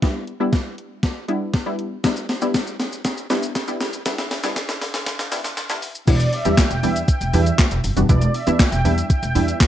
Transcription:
0.02 synth stab G3 B3 D4 E4, kick, snare, closed hi-hat
0.27 closed hi-hat
0.40 synth stab G3 B3 D4 E4
0.53 kick, snare, closed hi-hat
0.78 closed hi-hat
1.03 kick, snare, closed hi-hat
1.28 synth stab G3 B3 D4 E4, closed hi-hat
1.54 kick, snare, closed hi-hat
1.66 synth stab G3 B3 D4 E4
1.79 closed hi-hat
2.04 synth stab G3 B3 D4 E4, kick, snare, closed hi-hat, shaker
2.16 shaker
2.29 snare, closed hi-hat, shaker
2.42 synth stab G3 B3 D4 E4, shaker
2.54 kick, snare, closed hi-hat, shaker
2.67 shaker
2.80 snare, closed hi-hat, shaker
2.93 shaker
3.05 kick, snare, closed hi-hat, shaker
3.18 shaker
3.30 synth stab G3 B3 D4 E4, snare, closed hi-hat, shaker
3.43 shaker
3.55 kick, snare, closed hi-hat, shaker
3.68 synth stab G3 B3 D4 E4, shaker
3.81 snare, closed hi-hat, shaker
3.93 shaker
4.06 synth stab G3 B3 D4 E4, kick, snare, closed hi-hat, shaker
4.18 snare, shaker
4.31 snare, open hi-hat, shaker
4.43 synth stab G3 B3 D4 E4, snare, shaker
4.56 kick, snare, closed hi-hat, shaker
4.69 snare, shaker
4.81 snare, open hi-hat, shaker
4.94 snare, shaker
5.06 kick, snare, closed hi-hat, shaker
5.19 snare, shaker
5.32 synth stab G3 B3 D4 E4, snare, open hi-hat, shaker
5.44 snare, shaker
5.57 snare, closed hi-hat, shaker
5.69 synth stab G3 B3 D4 E4, snare, shaker
5.82 open hi-hat, shaker
5.95 shaker
6.07 upright bass E1, synth stab E3 G3 B3 D4 E4, supersaw synth D5, kick, closed hi-hat, crash, shaker
6.20 closed hi-hat, shaker
6.33 supersaw synth E5, open hi-hat, shaker
6.45 upright bass E2, synth stab E3 G3 B3 D4 G4, closed hi-hat, shaker
6.57 supersaw synth G5, kick, snare, clap, closed hi-hat, shaker
6.71 upright bass E1, closed hi-hat, shaker
6.83 upright bass E2, synth stab E3 G3 B3 D4 E4, supersaw synth E5, open hi-hat, shaker
6.96 closed hi-hat, shaker
7.08 supersaw synth G5, kick, closed hi-hat, shaker
7.21 upright bass E1, closed hi-hat, shaker
7.33 upright bass E2, synth stab E3 G3 B3 D4 E4, supersaw synth E5, open hi-hat, shaker
7.46 closed hi-hat, shaker
7.58 kick, snare, clap, closed hi-hat, shaker
7.71 upright bass E1, closed hi-hat, shaker
7.84 upright bass F#1, open hi-hat, shaker
7.96 upright bass F1, synth stab E3 G3 B3 D4 F#4, closed hi-hat, shaker
8.09 upright bass E1, synth stab E3 G3 B3 D4 E4, supersaw synth D5, kick, closed hi-hat, shaker
8.22 closed hi-hat, shaker
8.34 supersaw synth E5, open hi-hat, shaker
8.47 upright bass E2, synth stab E3 G3 B3 D4 E4, closed hi-hat, shaker
8.59 supersaw synth G5, kick, snare, clap, closed hi-hat, shaker
8.72 upright bass E1, closed hi-hat, shaker
8.85 upright bass E2, synth stab E3 G3 B3 D4 E4, supersaw synth E5, open hi-hat, shaker
8.98 closed hi-hat, shaker
9.10 supersaw synth G5, kick, closed hi-hat, shaker
9.23 upright bass E1, closed hi-hat, shaker
9.35 upright bass E2, synth stab E3 G3 B3 D4 E4, supersaw synth E5, open hi-hat, shaker
9.48 closed hi-hat, shaker
9.60 kick, snare, clap, closed hi-hat, shaker

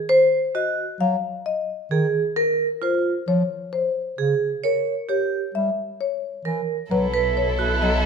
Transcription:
0.09 vibraphone C5, marimba C5
0.55 vibraphone F#4, marimba D#5
1.00 bass clarinet F#3, marimba F5
1.46 marimba D#5
1.91 bass clarinet D#3, vibraphone G#4
2.36 vibraphone A#4, marimba A#4
2.82 vibraphone F4, marimba C5
3.28 bass clarinet F3, marimba C#5
3.73 marimba C5
4.18 bass clarinet C#3, vibraphone G#4
4.64 marimba A#4, vibraphone C#5
5.09 vibraphone G4, marimba C#5
5.54 bass clarinet G3, marimba E5
6.01 marimba C#5
6.45 bass clarinet E3, vibraphone A#4
6.90 double bass section B1, bass clarinet F#3, violin section E4 A4, marimba B4
7.14 vibraphone B4
7.37 marimba C#5
7.59 vibraphone F#4
7.82 bass clarinet F#3, marimba D#5

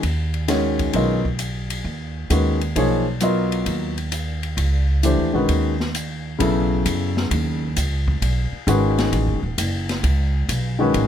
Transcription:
0.03 upright bass D#2, ride
0.34 ride
0.48 grand piano D#3 G#3 C#4 F#4 C#5, snare, hi-hat pedal, ride
0.79 kick, ride
0.93 upright bass B1, grand piano F#3 B3 F4 A#4 D#5, ride
1.25 kick
1.39 hi-hat pedal, ride
1.70 ride
1.84 upright bass D#2
2.30 upright bass D#2, grand piano D#3 G#3 C#4 F#4 B4, hi-hat pedal, ride
2.61 ride
2.76 upright bass B1, grand piano F3 A#3 D#4 G#4 C#5, ride
3.20 grand piano F#3 B3 F4 A#4 D#5, hi-hat pedal, ride
3.52 ride
3.66 upright bass D#2, ride
3.98 ride
4.12 hi-hat pedal, ride
4.43 ride
4.57 upright bass C#2, ride
5.03 grand piano E3 A3 D4 G4 C5, hi-hat pedal, ride
5.18 upright bass D#2
5.33 upright bass B1, grand piano D#3 G#3 C#4 F#4 B4
5.49 upright bass D#2, ride
5.80 snare
5.95 hi-hat pedal, ride
6.39 upright bass B1, grand piano C#3 F#3 B3 E4 A4, ride
6.86 upright bass F#2, hi-hat pedal, ride
7.17 snare
7.31 upright bass D#2, ride
7.76 upright bass C#2, hi-hat pedal, ride
8.08 kick
8.22 upright bass B1, ride
8.53 muted upright bass stroke
8.67 upright bass G#1, grand piano D#3 G#3 C#4 F#4 B4, hi-hat pedal, ride
8.98 snare, ride
9.12 upright bass A1, ride
9.28 upright bass F#1
9.43 upright bass D#1
9.58 upright bass F#1, hi-hat pedal, ride
9.89 snare, ride
10.03 upright bass C#2, ride
10.49 upright bass B1, hi-hat pedal, ride
10.79 grand piano D#3 G#3 C#4 F#4 B4
10.94 upright bass A1, ride

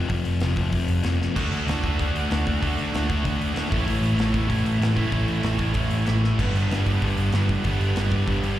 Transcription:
0.09 picked electric bass F1, distorted electric guitar F2 C3 F3, kick, open hi-hat
0.25 picked electric bass F1, open hi-hat
0.40 picked electric bass F1, distorted electric guitar F2 C3 F3, snare, open hi-hat
0.56 picked electric bass F1, distorted electric guitar F2 C3 F3, kick, open hi-hat
0.71 picked electric bass F1, distorted electric guitar F2 C3 F3, kick, open hi-hat
0.88 picked electric bass F1, open hi-hat
1.03 picked electric bass F1, distorted electric guitar F2 C3 F3, snare, open hi-hat
1.18 distorted electric guitar F2 C3 F3, snare
1.34 picked electric bass D2, distorted electric guitar D3 A3 D4 F#4 A4, kick, crash
1.52 picked electric bass D2, open hi-hat
1.66 picked electric bass D2, distorted electric guitar D3 A3 D4 F#4, snare, open hi-hat
1.83 picked electric bass D2, distorted electric guitar D3 A3 D4 F#4, kick, open hi-hat
1.99 picked electric bass D2, distorted electric guitar D3 A3 D4 F#4, kick, open hi-hat
2.15 picked electric bass D2, open hi-hat
2.30 picked electric bass D2, distorted electric guitar D3 A3 D4 F#4, snare, open hi-hat
2.45 distorted electric guitar D3 A3 D4 F#4, kick, open hi-hat
2.60 picked electric bass D2, distorted electric guitar D3 A3 D4 F#4 A4, kick, open hi-hat
2.78 picked electric bass D2, open hi-hat
2.91 picked electric bass D2, distorted electric guitar D3 A3 D4 F#4, open hi-hat
2.96 snare
3.08 picked electric bass D2, distorted electric guitar D3 A3 D4 F#4, kick, open hi-hat
3.23 picked electric bass D2, distorted electric guitar D3 A3 D4 F#4, kick, open hi-hat
3.41 picked electric bass D2, open hi-hat
3.55 picked electric bass D2, distorted electric guitar D3 A3 D4 F#4, snare, open hi-hat
3.70 picked electric bass A1, distorted electric guitar A2 E3 A3 C#4 E4, kick, open hi-hat
3.86 picked electric bass A1, distorted electric guitar A2 E3 A3 C#4 E4, open hi-hat
4.01 picked electric bass A1, open hi-hat
4.15 picked electric bass A1, distorted electric guitar E3 A3 E4, open hi-hat
4.20 distorted electric guitar A2 E3 A3 C#4, snare
4.34 picked electric bass A1, distorted electric guitar A2 E3 A3 C#4 E4, kick, open hi-hat
4.48 picked electric bass A1, distorted electric guitar A2 E3 A3 C#4 E4, kick, open hi-hat
4.65 picked electric bass A1, open hi-hat
4.79 picked electric bass A1, distorted electric guitar A2 E3 A3 C#4 E4, open hi-hat
4.83 snare
4.95 distorted electric guitar A2 E3 A3 C#4 E4, kick, open hi-hat
5.10 picked electric bass A1, distorted electric guitar A2 E3 A3 C#4 E4, kick, open hi-hat
5.28 picked electric bass A1, open hi-hat
5.42 picked electric bass A1, distorted electric guitar A2 E3 A3 C#4 E4, snare, open hi-hat
5.58 picked electric bass A1, distorted electric guitar A2 E3 A3 C#4 E4, kick, open hi-hat
5.74 picked electric bass A1, distorted electric guitar A2 E3 A3 C#4 E4, kick, open hi-hat
5.91 picked electric bass A1, open hi-hat
6.06 picked electric bass A1, distorted electric guitar A2 E3 A3 C#4 E4, snare, open hi-hat
6.23 distorted electric guitar A2 E3 A3 C#4 E4, snare
6.39 picked electric bass G1, distorted electric guitar G2 D3 G3 B3 D4, kick, crash
6.54 picked electric bass G1, open hi-hat
6.70 picked electric bass G1, distorted electric guitar G2 D3 G3 B3 D4, snare, open hi-hat
6.86 picked electric bass G1, distorted electric guitar G2 D3 G3 B3 D4, kick, open hi-hat
7.02 picked electric bass G1, distorted electric guitar G2 D3 G3 B3 D4, kick, open hi-hat
7.17 picked electric bass G1, open hi-hat
7.32 picked electric bass G1, distorted electric guitar G2 D3 G3 B3 D4, snare, open hi-hat
7.49 distorted electric guitar G2 D3 G3 B3 D4, kick, open hi-hat
7.64 picked electric bass G1, distorted electric guitar G2 D3 G3 B3 D4, kick, open hi-hat
7.81 picked electric bass G1, open hi-hat
7.95 picked electric bass G1, distorted electric guitar G2 D3 G3 B3 D4, snare, open hi-hat
8.11 picked electric bass G1, distorted electric guitar G2 D3 G3 B3 D4, kick, open hi-hat
8.26 picked electric bass G1, distorted electric guitar G2 D3 G3 B3 D4, kick, open hi-hat
8.42 picked electric bass G1, open hi-hat

